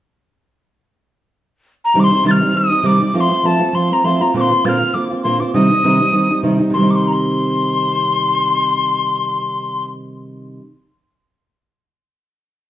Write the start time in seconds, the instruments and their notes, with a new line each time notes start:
1.84 tin whistle A#5
1.94 steel-string acoustic guitar C3 D#3 G3 C4 D#4
2.00 tin whistle D6
2.04 tin whistle C6
2.10 steel-string acoustic guitar G3 C4 D#4
2.24 steel-string acoustic guitar C3 D#3 G3 C4 D#4, tin whistle A6
2.31 tin whistle F6
2.40 steel-string acoustic guitar G3 C4 D#4
2.53 steel-string acoustic guitar D#3 G3 C4 D#4, tin whistle D#6
2.70 steel-string acoustic guitar G3 C4 D#4
2.83 steel-string acoustic guitar C3 D#3 G3 C4 D#4, tin whistle D6
2.99 steel-string acoustic guitar G3 C4 D#4
3.14 steel-string acoustic guitar F3 A3 C4 F4, tin whistle D6
3.20 tin whistle C6
3.30 steel-string acoustic guitar A3 C4 F4
3.43 steel-string acoustic guitar F3 A3 C4 F4, tin whistle A5
3.59 steel-string acoustic guitar A3 C4 F4
3.73 steel-string acoustic guitar F3 A3 C4 F4, tin whistle C6
3.90 steel-string acoustic guitar A3 C4 F4, tin whistle A#5
4.04 steel-string acoustic guitar F3 A3 C4 F4, tin whistle C6
4.21 steel-string acoustic guitar A3 C4 F4, tin whistle A#5
4.34 steel-string acoustic guitar A#2 D3 A#3 C4 F4, tin whistle D6
4.41 tin whistle C6
4.49 steel-string acoustic guitar A#3 C4 F4
4.64 steel-string acoustic guitar A#2 D3 A#3 C4 F4, tin whistle A6
4.69 tin whistle F6
4.79 steel-string acoustic guitar A#3 C4 F4
4.93 steel-string acoustic guitar D3 A#3 C4 F4, tin whistle D6
5.10 steel-string acoustic guitar A#3 C4 F4
5.23 steel-string acoustic guitar A#2 D3 A#3 C4 F4, tin whistle C6
5.40 steel-string acoustic guitar A#3 C4 F4, tin whistle D6
5.54 steel-string acoustic guitar C3 D#3 G3 C4 D#4, tin whistle D#6
5.70 steel-string acoustic guitar C4 D#4
5.84 steel-string acoustic guitar C3 D#3 G3 C4 D#4
6.00 steel-string acoustic guitar G3 C4 D#4
6.12 steel-string acoustic guitar D#3 G3 C4 D#4
6.30 steel-string acoustic guitar G3 C4 D#4
6.43 steel-string acoustic guitar C3 D#3 G3 C4 D#4
6.59 steel-string acoustic guitar G3 C4 D#4
6.70 steel-string acoustic guitar C3 D#3, tin whistle C6
6.77 steel-string acoustic guitar G3 C4
6.83 steel-string acoustic guitar D#4
6.90 tin whistle D6
6.95 tin whistle C6
7.07 tin whistle A#5
7.12 tin whistle C6